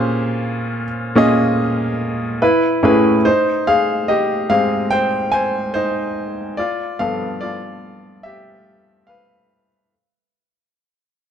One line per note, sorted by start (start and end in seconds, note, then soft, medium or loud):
0.00 0.83 A#2 medium
0.00 0.87 C#4 medium
0.00 0.84 F4 medium
0.00 2.43 G4 medium
0.00 0.84 G#4 medium
0.00 0.84 C5 medium
1.15 2.41 A#2 medium
1.15 2.41 C#4 medium
1.15 2.41 F4 medium
1.15 2.42 G#4 medium
1.15 2.42 D#5 medium
2.42 2.82 E4 medium
2.42 2.84 B4 medium
2.83 3.15 A2 medium
2.83 3.15 C#4 medium
2.83 3.15 E4 medium
2.83 3.16 G#4 medium
2.83 3.16 B4 medium
3.25 3.64 D#4 medium
3.25 3.67 C5 medium
3.67 3.77 G#4 medium
3.67 3.77 F5 medium
4.08 4.47 G4 medium
4.08 4.47 D#5 medium
4.49 5.06 G#2 medium
4.49 5.07 C4 medium
4.49 5.06 G4 soft
4.49 4.89 G#4 medium
4.49 4.88 F5 medium
4.91 5.30 C5 medium
4.91 5.29 G5 loud
5.32 5.43 C5 medium
5.32 5.41 G#5 loud
5.74 6.54 D#4 medium
5.74 6.60 C5 medium
6.57 6.97 F4 medium
6.57 7.00 D5 medium
6.99 7.56 G2 soft
6.99 7.56 F3 soft
6.99 7.57 B3 medium
6.99 7.39 A4 medium
6.99 7.42 F5 medium
7.41 8.21 F4 medium
7.41 8.26 D5 medium
8.23 9.04 G4 medium
8.23 9.10 E5 medium
9.07 9.68 B4 medium
9.07 9.67 F5 medium